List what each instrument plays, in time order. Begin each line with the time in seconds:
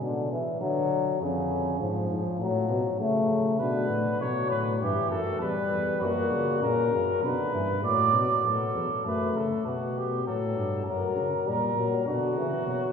0.01 bass trombone B2, euphonium D3
0.32 euphonium E3
0.60 bass trombone D3, euphonium F#3
1.21 bass trombone F2, euphonium C#3
1.80 bass trombone G#2, euphonium F3
2.10 bass trombone G#2
2.39 bass trombone A2, euphonium F#3
2.68 bass trombone B2
2.99 bass trombone C#3, euphonium A3
3.60 bass trombone B2, euphonium D3, flugelhorn B4
3.89 bass trombone A2
4.20 bass trombone B2, euphonium F#3, flugelhorn C#5
4.50 bass trombone A2, flugelhorn B4
4.81 bass trombone G2, euphonium E3, flugelhorn G4
5.10 bass trombone F#2, flugelhorn A4
5.40 bass trombone E2, euphonium G3, flugelhorn B4
5.70 bass trombone E2
6.01 bass trombone F#2, euphonium A#2, flugelhorn F#4
6.31 bass trombone C#3
6.62 bass trombone A#2, euphonium C#3, flugelhorn A#4
6.92 bass trombone F#2, euphonium C#3
7.22 bass trombone B2, euphonium D3, flugelhorn B4
7.52 bass trombone G2, euphonium E3
7.83 bass trombone A2, euphonium F#3, flugelhorn D5
8.12 bass trombone B2
8.44 bass trombone A2, euphonium F#3, flugelhorn A4
8.74 bass trombone E2
9.05 bass trombone F#2, euphonium A3, flugelhorn B4
9.34 bass trombone C#3, flugelhorn A4
9.65 bass trombone B2, euphonium B3, flugelhorn F#4
9.98 flugelhorn G4
10.25 bass trombone A2, euphonium F#3, flugelhorn A4
10.56 bass trombone G2
10.85 bass trombone F#2, euphonium F#3, flugelhorn A#4
11.16 bass trombone C#3
11.46 bass trombone A#2, euphonium G3, flugelhorn A#4
11.76 bass trombone A#2, euphonium F#3
12.06 bass trombone B2, euphonium D3, flugelhorn F#4
12.36 bass trombone C#3, euphonium E3
12.66 bass trombone B2, euphonium F#3